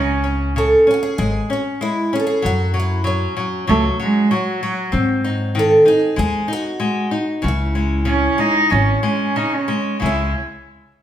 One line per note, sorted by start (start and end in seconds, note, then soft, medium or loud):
0.00 0.73 C#2 medium
0.00 0.55 C#3 medium
0.00 0.41 C#4 medium
0.24 0.54 C#4 soft
0.56 0.86 C#3 soft
0.56 0.89 A4 medium
0.87 1.17 C#4 soft
0.87 0.93 G#4 medium
0.94 1.01 F#4 medium
1.03 1.17 G#4 medium
1.18 1.39 G#1 medium
1.18 1.49 G#3 medium
1.18 1.51 G#4 medium
1.50 1.80 C#4 medium
1.50 1.61 F#4 medium
1.81 2.12 G#3 medium
1.81 2.14 E4 medium
2.13 2.43 C#4 medium
2.13 2.19 G#4 medium
2.20 2.26 A4 medium
2.27 2.45 G#4 medium
2.42 3.25 F#2 medium
2.42 2.73 F#3 medium
2.42 2.77 F#4 medium
2.74 3.03 F#3 soft
2.80 3.09 E4 medium
3.04 3.35 F#3 medium
3.04 4.26 C#4 medium
3.37 3.66 F#3 soft
3.67 3.89 C#2 medium
3.67 3.98 F#3 medium
3.67 3.83 A3 medium
4.00 4.29 F#3 medium
4.00 4.33 G#3 medium
4.31 4.60 F#3 medium
4.31 5.39 F#3 medium
4.63 4.92 F#3 medium
4.92 5.74 G#2 medium
4.92 7.39 C4 medium
5.24 5.54 D#4 medium
5.55 5.85 D#3 medium
5.59 5.88 A4 medium
5.86 6.16 D#4 medium
5.86 6.18 G#4 medium
6.16 6.38 D#2 medium
6.16 6.47 G#3 medium
6.16 6.50 G#4 loud
6.48 6.78 D#4 medium
6.53 7.48 F#4 medium
6.80 7.10 G#3 medium
7.11 7.42 D#4 medium
7.42 8.27 C#2 medium
7.42 8.04 C#3 medium
7.48 9.35 E4 medium
7.75 8.06 G#3 soft
8.05 8.37 C#3 medium
8.05 8.41 C#4 medium
8.38 8.70 G#3 medium
8.38 8.73 D#4 loud
8.70 8.93 G#1 medium
8.70 9.02 C#3 soft
8.70 9.03 C#4 medium
9.03 9.35 G#3 soft
9.03 9.38 C#4 medium
9.36 9.69 C#3 soft
9.36 9.55 D#4 medium
9.54 10.03 C#4 medium
9.68 10.01 G#3 soft
10.00 10.33 C#2 medium
10.00 10.31 C#3 soft
10.00 10.32 G#3 medium
10.00 10.33 E4 medium
10.06 10.35 C#4 medium